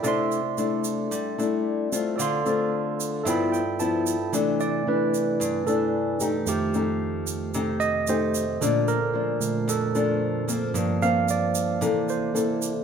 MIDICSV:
0, 0, Header, 1, 4, 480
1, 0, Start_track
1, 0, Key_signature, 0, "major"
1, 0, Tempo, 535236
1, 41, Time_signature, 4, 2, 24, 8
1, 11514, End_track
2, 0, Start_track
2, 0, Title_t, "Tine electric piano"
2, 0, Program_c, 0, 4
2, 0, Control_c, 0, 64, 127
2, 23, Note_on_c, 0, 69, 57
2, 36, Note_on_c, 0, 74, 53
2, 51, Control_c, 0, 64, 0
2, 56, Note_on_c, 0, 76, 56
2, 70, Note_on_c, 0, 84, 68
2, 196, Control_c, 0, 64, 127
2, 1917, Note_off_c, 0, 69, 0
2, 1924, Note_off_c, 0, 74, 0
2, 1934, Note_off_c, 0, 76, 0
2, 1936, Note_on_c, 0, 69, 57
2, 1941, Note_off_c, 0, 84, 0
2, 1953, Note_on_c, 0, 74, 56
2, 1974, Note_on_c, 0, 77, 50
2, 1975, Control_c, 0, 64, 0
2, 1988, Note_on_c, 0, 84, 66
2, 2121, Control_c, 0, 64, 127
2, 2890, Note_off_c, 0, 69, 0
2, 2899, Note_off_c, 0, 74, 0
2, 2900, Note_on_c, 0, 69, 54
2, 2909, Note_off_c, 0, 77, 0
2, 2913, Note_on_c, 0, 76, 50
2, 2916, Note_off_c, 0, 84, 0
2, 2927, Note_on_c, 0, 65, 50
2, 2933, Control_c, 0, 64, 0
2, 2940, Note_on_c, 0, 79, 47
2, 2957, Note_on_c, 0, 83, 60
2, 3112, Control_c, 0, 64, 127
2, 3148, Note_off_c, 0, 79, 0
2, 3158, Note_on_c, 0, 79, 50
2, 3384, Note_off_c, 0, 79, 0
2, 3404, Note_on_c, 0, 81, 52
2, 3850, Note_off_c, 0, 81, 0
2, 3852, Note_off_c, 0, 69, 0
2, 3859, Note_off_c, 0, 76, 0
2, 3866, Note_off_c, 0, 65, 0
2, 3879, Note_on_c, 0, 48, 43
2, 3881, Note_off_c, 0, 83, 0
2, 3882, Note_on_c, 0, 52, 39
2, 3887, Note_on_c, 0, 57, 44
2, 3894, Control_c, 0, 64, 0
2, 4040, Control_c, 0, 64, 127
2, 4131, Note_on_c, 0, 74, 71
2, 4360, Note_off_c, 0, 74, 0
2, 4379, Note_on_c, 0, 71, 58
2, 4565, Note_off_c, 0, 48, 0
2, 4567, Note_off_c, 0, 52, 0
2, 4569, Note_off_c, 0, 57, 0
2, 5055, Note_off_c, 0, 71, 0
2, 5083, Note_on_c, 0, 69, 59
2, 5767, Note_off_c, 0, 69, 0
2, 5791, Note_on_c, 0, 41, 43
2, 5796, Note_on_c, 0, 51, 42
2, 5803, Note_on_c, 0, 57, 46
2, 5816, Control_c, 0, 64, 0
2, 5818, Note_on_c, 0, 67, 61
2, 5996, Control_c, 0, 64, 127
2, 6481, Note_off_c, 0, 41, 0
2, 6484, Note_off_c, 0, 51, 0
2, 6487, Note_off_c, 0, 57, 0
2, 6494, Note_off_c, 0, 67, 0
2, 6995, Note_on_c, 0, 75, 77
2, 7231, Note_off_c, 0, 75, 0
2, 7259, Note_on_c, 0, 72, 63
2, 7714, Note_on_c, 0, 46, 43
2, 7718, Note_on_c, 0, 50, 40
2, 7724, Note_on_c, 0, 69, 50
2, 7735, Control_c, 0, 64, 0
2, 7891, Control_c, 0, 64, 127
2, 7935, Note_off_c, 0, 72, 0
2, 7964, Note_on_c, 0, 70, 70
2, 8402, Note_off_c, 0, 46, 0
2, 8404, Note_off_c, 0, 50, 0
2, 8407, Note_off_c, 0, 69, 0
2, 8431, Note_on_c, 0, 46, 38
2, 8436, Note_on_c, 0, 57, 43
2, 8437, Note_on_c, 0, 50, 35
2, 8647, Note_off_c, 0, 70, 0
2, 8652, Note_off_c, 0, 46, 0
2, 8654, Note_off_c, 0, 57, 0
2, 8655, Note_off_c, 0, 50, 0
2, 8695, Note_on_c, 0, 69, 53
2, 9372, Note_off_c, 0, 69, 0
2, 9629, Note_on_c, 0, 43, 44
2, 9637, Note_on_c, 0, 53, 40
2, 9645, Note_on_c, 0, 58, 50
2, 9654, Control_c, 0, 64, 0
2, 9832, Control_c, 0, 64, 127
2, 9887, Note_on_c, 0, 77, 76
2, 9954, Note_off_c, 0, 43, 0
2, 9958, Note_off_c, 0, 53, 0
2, 9962, Note_off_c, 0, 58, 0
2, 10116, Note_off_c, 0, 77, 0
2, 10139, Note_on_c, 0, 74, 60
2, 10596, Note_on_c, 0, 48, 42
2, 10604, Note_on_c, 0, 52, 38
2, 10607, Note_on_c, 0, 58, 46
2, 10611, Control_c, 0, 64, 0
2, 10751, Control_c, 0, 64, 127
2, 10813, Note_off_c, 0, 74, 0
2, 10850, Note_on_c, 0, 72, 61
2, 10917, Note_off_c, 0, 48, 0
2, 10921, Note_off_c, 0, 52, 0
2, 10923, Note_off_c, 0, 58, 0
2, 11514, Note_off_c, 0, 72, 0
2, 11514, End_track
3, 0, Start_track
3, 0, Title_t, "Nylon-string guitar"
3, 0, Program_c, 1, 24
3, 28, Note_on_c, 1, 57, 52
3, 32, Note_on_c, 1, 48, 71
3, 34, Note_on_c, 1, 62, 61
3, 39, Note_on_c, 1, 64, 60
3, 344, Note_off_c, 1, 57, 0
3, 347, Note_off_c, 1, 62, 0
3, 348, Note_off_c, 1, 64, 0
3, 516, Note_on_c, 1, 57, 50
3, 519, Note_on_c, 1, 62, 55
3, 524, Note_on_c, 1, 64, 63
3, 974, Note_off_c, 1, 48, 0
3, 997, Note_on_c, 1, 55, 68
3, 1201, Note_off_c, 1, 57, 0
3, 1202, Note_off_c, 1, 62, 0
3, 1205, Note_off_c, 1, 64, 0
3, 1240, Note_on_c, 1, 57, 57
3, 1244, Note_on_c, 1, 62, 56
3, 1247, Note_on_c, 1, 64, 70
3, 1683, Note_off_c, 1, 57, 0
3, 1685, Note_off_c, 1, 62, 0
3, 1686, Note_off_c, 1, 64, 0
3, 1724, Note_on_c, 1, 57, 63
3, 1724, Note_on_c, 1, 60, 59
3, 1728, Note_on_c, 1, 65, 70
3, 1936, Note_off_c, 1, 55, 0
3, 1964, Note_on_c, 1, 50, 74
3, 2165, Note_off_c, 1, 57, 0
3, 2165, Note_off_c, 1, 60, 0
3, 2166, Note_off_c, 1, 65, 0
3, 2201, Note_on_c, 1, 57, 65
3, 2205, Note_on_c, 1, 60, 60
3, 2209, Note_on_c, 1, 65, 63
3, 2884, Note_off_c, 1, 57, 0
3, 2886, Note_off_c, 1, 60, 0
3, 2886, Note_off_c, 1, 65, 0
3, 2899, Note_off_c, 1, 50, 0
3, 2917, Note_on_c, 1, 43, 71
3, 2920, Note_on_c, 1, 53, 55
3, 2926, Note_on_c, 1, 59, 57
3, 2928, Note_on_c, 1, 64, 66
3, 3231, Note_off_c, 1, 53, 0
3, 3233, Note_off_c, 1, 59, 0
3, 3233, Note_off_c, 1, 64, 0
3, 3406, Note_on_c, 1, 53, 55
3, 3409, Note_on_c, 1, 59, 51
3, 3415, Note_on_c, 1, 64, 61
3, 3727, Note_off_c, 1, 53, 0
3, 3729, Note_off_c, 1, 59, 0
3, 3731, Note_off_c, 1, 64, 0
3, 3856, Note_off_c, 1, 43, 0
3, 3882, Note_on_c, 1, 48, 68
3, 3885, Note_on_c, 1, 52, 58
3, 3887, Note_on_c, 1, 57, 58
3, 3892, Note_on_c, 1, 62, 65
3, 4324, Note_off_c, 1, 52, 0
3, 4327, Note_off_c, 1, 57, 0
3, 4328, Note_off_c, 1, 62, 0
3, 4367, Note_on_c, 1, 52, 55
3, 4372, Note_on_c, 1, 57, 52
3, 4377, Note_on_c, 1, 62, 57
3, 4819, Note_off_c, 1, 48, 0
3, 4841, Note_on_c, 1, 43, 65
3, 5047, Note_off_c, 1, 52, 0
3, 5049, Note_off_c, 1, 57, 0
3, 5051, Note_off_c, 1, 62, 0
3, 5083, Note_on_c, 1, 52, 63
3, 5088, Note_on_c, 1, 57, 61
3, 5092, Note_on_c, 1, 62, 69
3, 5525, Note_off_c, 1, 52, 0
3, 5527, Note_off_c, 1, 57, 0
3, 5529, Note_off_c, 1, 62, 0
3, 5565, Note_on_c, 1, 57, 60
3, 5569, Note_on_c, 1, 63, 59
3, 5571, Note_on_c, 1, 67, 74
3, 5778, Note_off_c, 1, 43, 0
3, 5806, Note_on_c, 1, 53, 70
3, 6006, Note_off_c, 1, 57, 0
3, 6007, Note_off_c, 1, 63, 0
3, 6007, Note_off_c, 1, 67, 0
3, 6049, Note_on_c, 1, 57, 64
3, 6054, Note_on_c, 1, 63, 61
3, 6058, Note_on_c, 1, 67, 73
3, 6727, Note_off_c, 1, 57, 0
3, 6730, Note_off_c, 1, 63, 0
3, 6731, Note_off_c, 1, 67, 0
3, 6740, Note_off_c, 1, 53, 0
3, 6766, Note_on_c, 1, 48, 74
3, 6767, Note_on_c, 1, 57, 60
3, 6771, Note_on_c, 1, 63, 58
3, 6771, Note_on_c, 1, 67, 63
3, 7074, Note_off_c, 1, 57, 0
3, 7075, Note_off_c, 1, 63, 0
3, 7076, Note_off_c, 1, 67, 0
3, 7250, Note_on_c, 1, 57, 61
3, 7254, Note_on_c, 1, 63, 56
3, 7260, Note_on_c, 1, 67, 65
3, 7569, Note_off_c, 1, 57, 0
3, 7570, Note_off_c, 1, 63, 0
3, 7574, Note_off_c, 1, 67, 0
3, 7700, Note_off_c, 1, 48, 0
3, 7723, Note_on_c, 1, 53, 55
3, 7726, Note_on_c, 1, 46, 72
3, 7731, Note_on_c, 1, 57, 61
3, 7734, Note_on_c, 1, 62, 64
3, 8032, Note_off_c, 1, 53, 0
3, 8034, Note_off_c, 1, 57, 0
3, 8037, Note_off_c, 1, 62, 0
3, 8192, Note_on_c, 1, 53, 58
3, 8201, Note_on_c, 1, 57, 47
3, 8206, Note_on_c, 1, 62, 57
3, 8660, Note_off_c, 1, 46, 0
3, 8677, Note_on_c, 1, 41, 69
3, 8878, Note_off_c, 1, 53, 0
3, 8883, Note_off_c, 1, 57, 0
3, 8884, Note_off_c, 1, 62, 0
3, 8922, Note_on_c, 1, 53, 60
3, 8926, Note_on_c, 1, 57, 66
3, 8928, Note_on_c, 1, 62, 63
3, 9363, Note_off_c, 1, 53, 0
3, 9364, Note_off_c, 1, 57, 0
3, 9366, Note_off_c, 1, 62, 0
3, 9394, Note_on_c, 1, 53, 64
3, 9398, Note_on_c, 1, 58, 69
3, 9403, Note_on_c, 1, 60, 71
3, 9615, Note_off_c, 1, 41, 0
3, 9633, Note_on_c, 1, 43, 71
3, 9839, Note_off_c, 1, 53, 0
3, 9841, Note_off_c, 1, 58, 0
3, 9843, Note_off_c, 1, 60, 0
3, 9882, Note_on_c, 1, 58, 65
3, 9884, Note_on_c, 1, 53, 64
3, 9889, Note_on_c, 1, 60, 66
3, 10562, Note_off_c, 1, 58, 0
3, 10563, Note_off_c, 1, 53, 0
3, 10566, Note_off_c, 1, 60, 0
3, 10572, Note_off_c, 1, 43, 0
3, 10591, Note_on_c, 1, 58, 55
3, 10592, Note_on_c, 1, 48, 68
3, 10594, Note_on_c, 1, 64, 52
3, 10600, Note_on_c, 1, 69, 58
3, 11036, Note_off_c, 1, 58, 0
3, 11038, Note_off_c, 1, 64, 0
3, 11041, Note_off_c, 1, 69, 0
3, 11068, Note_on_c, 1, 58, 50
3, 11074, Note_on_c, 1, 64, 57
3, 11074, Note_on_c, 1, 69, 59
3, 11396, Note_off_c, 1, 58, 0
3, 11398, Note_off_c, 1, 64, 0
3, 11399, Note_off_c, 1, 69, 0
3, 11514, Note_off_c, 1, 48, 0
3, 11514, End_track
4, 0, Start_track
4, 0, Title_t, "Drums"
4, 37, Note_on_c, 9, 82, 62
4, 127, Note_off_c, 9, 82, 0
4, 283, Note_on_c, 9, 82, 27
4, 373, Note_off_c, 9, 82, 0
4, 517, Note_on_c, 9, 82, 49
4, 607, Note_off_c, 9, 82, 0
4, 755, Note_on_c, 9, 82, 63
4, 845, Note_off_c, 9, 82, 0
4, 1003, Note_on_c, 9, 82, 65
4, 1092, Note_off_c, 9, 82, 0
4, 1250, Note_on_c, 9, 82, 28
4, 1340, Note_off_c, 9, 82, 0
4, 1728, Note_on_c, 9, 82, 64
4, 1817, Note_off_c, 9, 82, 0
4, 1967, Note_on_c, 9, 82, 65
4, 2057, Note_off_c, 9, 82, 0
4, 2206, Note_on_c, 9, 82, 27
4, 2296, Note_off_c, 9, 82, 0
4, 2692, Note_on_c, 9, 82, 65
4, 2781, Note_off_c, 9, 82, 0
4, 2929, Note_on_c, 9, 82, 63
4, 3019, Note_off_c, 9, 82, 0
4, 3173, Note_on_c, 9, 82, 28
4, 3263, Note_off_c, 9, 82, 0
4, 3405, Note_on_c, 9, 82, 55
4, 3494, Note_off_c, 9, 82, 0
4, 3645, Note_on_c, 9, 82, 66
4, 3735, Note_off_c, 9, 82, 0
4, 3887, Note_on_c, 9, 82, 63
4, 3977, Note_off_c, 9, 82, 0
4, 4127, Note_on_c, 9, 82, 27
4, 4217, Note_off_c, 9, 82, 0
4, 4611, Note_on_c, 9, 82, 62
4, 4701, Note_off_c, 9, 82, 0
4, 4854, Note_on_c, 9, 82, 62
4, 4943, Note_off_c, 9, 82, 0
4, 5087, Note_on_c, 9, 82, 28
4, 5176, Note_off_c, 9, 82, 0
4, 5562, Note_on_c, 9, 82, 64
4, 5652, Note_off_c, 9, 82, 0
4, 5800, Note_on_c, 9, 82, 63
4, 5890, Note_off_c, 9, 82, 0
4, 6043, Note_on_c, 9, 82, 26
4, 6133, Note_off_c, 9, 82, 0
4, 6518, Note_on_c, 9, 82, 64
4, 6608, Note_off_c, 9, 82, 0
4, 6763, Note_on_c, 9, 82, 62
4, 6852, Note_off_c, 9, 82, 0
4, 7000, Note_on_c, 9, 82, 27
4, 7090, Note_off_c, 9, 82, 0
4, 7237, Note_on_c, 9, 82, 49
4, 7327, Note_off_c, 9, 82, 0
4, 7483, Note_on_c, 9, 82, 61
4, 7573, Note_off_c, 9, 82, 0
4, 7730, Note_on_c, 9, 82, 65
4, 7820, Note_off_c, 9, 82, 0
4, 7963, Note_on_c, 9, 82, 27
4, 8053, Note_off_c, 9, 82, 0
4, 8441, Note_on_c, 9, 82, 63
4, 8531, Note_off_c, 9, 82, 0
4, 8689, Note_on_c, 9, 82, 65
4, 8778, Note_off_c, 9, 82, 0
4, 8924, Note_on_c, 9, 82, 27
4, 9014, Note_off_c, 9, 82, 0
4, 9405, Note_on_c, 9, 82, 65
4, 9494, Note_off_c, 9, 82, 0
4, 9642, Note_on_c, 9, 82, 64
4, 9731, Note_off_c, 9, 82, 0
4, 9885, Note_on_c, 9, 82, 29
4, 9975, Note_off_c, 9, 82, 0
4, 10119, Note_on_c, 9, 82, 52
4, 10209, Note_off_c, 9, 82, 0
4, 10355, Note_on_c, 9, 82, 64
4, 10445, Note_off_c, 9, 82, 0
4, 10598, Note_on_c, 9, 82, 63
4, 10688, Note_off_c, 9, 82, 0
4, 10839, Note_on_c, 9, 82, 28
4, 10929, Note_off_c, 9, 82, 0
4, 11083, Note_on_c, 9, 82, 50
4, 11173, Note_off_c, 9, 82, 0
4, 11317, Note_on_c, 9, 82, 65
4, 11407, Note_off_c, 9, 82, 0
4, 11514, End_track
0, 0, End_of_file